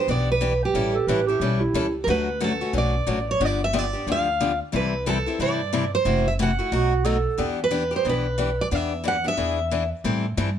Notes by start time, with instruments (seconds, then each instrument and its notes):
0.08 upright bass B1, steel-string acoustic guitar E3 B3 D4 G4 D5
0.32 steel-string acoustic guitar B4
0.41 steel-string acoustic guitar E3 B3 D4 G4
0.65 steel-string acoustic guitar G4
0.74 upright bass A1, steel-string acoustic guitar E3 G3 C#4 E4 A4
0.94 clarinet A4
1.07 upright bass A1, steel-string acoustic guitar E3 G3 C#4 E4 A4, clarinet B4
1.27 steel-string acoustic guitar C#4 E4 A4, clarinet G4
1.40 upright bass B1, steel-string acoustic guitar E3 G3 C#4 E4 A4
1.61 clarinet E4
1.73 upright bass C#2, steel-string acoustic guitar E3 G3 C#4 E4 A4
2.04 upright bass D2, steel-string acoustic guitar D3 F#3 A#4
2.08 steel-string acoustic guitar A3 C#4 F#4 B4
2.40 steel-string acoustic guitar D3 F#3 A3 C#4 F#4 A4
2.61 steel-string acoustic guitar A3 C#4 F#4
2.73 upright bass B1, steel-string acoustic guitar D3 F#3 A3 C#4 F#4
2.78 steel-string acoustic guitar D5
3.07 upright bass A1, steel-string acoustic guitar D3 F#3 A3 C#4 F#4
3.31 steel-string acoustic guitar C#5
3.40 upright bass G1, steel-string acoustic guitar D3 F3 B3 D4 G4
3.45 steel-string acoustic guitar D5
3.64 steel-string acoustic guitar E5
3.73 steel-string acoustic guitar D3 F3 B3 D4 G4
3.79 steel-string acoustic guitar D5
3.93 steel-string acoustic guitar B3 D4 G4
4.07 upright bass D2, steel-string acoustic guitar D3 F3 B3 D4 G4
4.12 steel-string acoustic guitar F5
4.40 steel-string acoustic guitar D3 F3 B3 D4 G4
4.72 upright bass C2, steel-string acoustic guitar C3 E3 G3 C4 E4 A4 B4
5.06 steel-string acoustic guitar C3 E3 G3 C4 E4 A4
5.26 steel-string acoustic guitar G3 C4 E4 A4
5.39 upright bass G2, steel-string acoustic guitar C3 E3 G3 C4 E4 A4 D5
5.73 steel-string acoustic guitar C3 E3 G3 C4 E4 A4
5.95 steel-string acoustic guitar C5
6.05 upright bass F#1, steel-string acoustic guitar C3 E3 A3 E4 F#4
6.28 steel-string acoustic guitar E5
6.39 steel-string acoustic guitar C3 E3 A3 E4 F#4 F#5
6.59 steel-string acoustic guitar A3 E4 F#4
6.72 upright bass B1, steel-string acoustic guitar B2 F#3 A3 D#4 F#4, clarinet F#4
7.05 steel-string acoustic guitar B2 F#3 A3 D#4 F#4, clarinet A4
7.38 upright bass E2, steel-string acoustic guitar E3 B3 D4 G4
7.64 steel-string acoustic guitar B4
7.71 steel-string acoustic guitar E3 B3 D4 G4
7.91 steel-string acoustic guitar B3 D4 G4
7.96 steel-string acoustic guitar C5
8.05 upright bass B1, steel-string acoustic guitar E3 B3 D4 G4
8.09 steel-string acoustic guitar B4
8.38 steel-string acoustic guitar E3 B3 D4 G4
8.61 steel-string acoustic guitar D5
8.71 upright bass E2, steel-string acoustic guitar E3 B3 D4 G4 E5
9.04 steel-string acoustic guitar E3 B3 D4 G4
9.08 steel-string acoustic guitar F#5
9.24 steel-string acoustic guitar B3 D4 G4 E5
9.37 upright bass E2, steel-string acoustic guitar E3 B3 D4 G#4
9.71 steel-string acoustic guitar E3 B3 D4 G#4
10.04 upright bass A2, steel-string acoustic guitar E3 G3 C4 E4 A4
10.37 upright bass G2, steel-string acoustic guitar E3 G3 C4 E4 A4